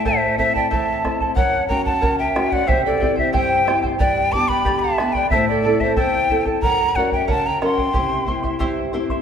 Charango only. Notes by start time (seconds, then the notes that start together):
0.05 E4 A4 C5 E5 A5
0.38 E4 A4 E5 A5
0.54 E4 A4 A5
0.70 E4 A4 C5 E5 A5
1.04 E4 A4 E5 A5
1.20 E4 A4 A5
1.36 A#4 C#5 F#5
1.68 A#4 C#5 F#5
1.85 C#5 F#5
2.01 A#4 C#5 F#5
2.35 A#4 C#5 F#5
2.50 C#5 F#5
2.66 E4 G4 C5 E5 G5
3.00 E4 C5 E5 G5
3.16 E4 C5 G5
3.33 E4 G4 C5 E5 G5
3.65 E4 C5 E5 G5
3.82 E4 C5 G5
3.99 G4 B4 D5 G5 B5
4.32 B4 D5 G5 B5
4.49 B4 D5 B5
4.65 G4 B4 D5 G5 B5
4.99 B4 D5 G5 B5
5.15 B4 D5 B5
5.31 E4 A4 C5 E5 A5
5.63 E4 A4 E5 A5
5.80 E4 A4 A5
5.96 E4 A4 C5 E5 A5
6.30 E4 A4 E5 A5
6.46 E4 A4 A5
6.63 A#4 C#5 F#5
6.95 A#4 C#5 F#5
7.12 C#5 F#5
7.27 A#4 C#5 F#5
7.61 A#4 C#5 F#5
7.78 C#5 F#5
7.93 E4 G4 C5 E5 C6
8.26 E4 C5 E5 C6
8.43 E4 E5 C6
8.59 E4 G4 C5 E5 C6
8.93 E4 C5 E5 C6
9.10 E4 E5 C6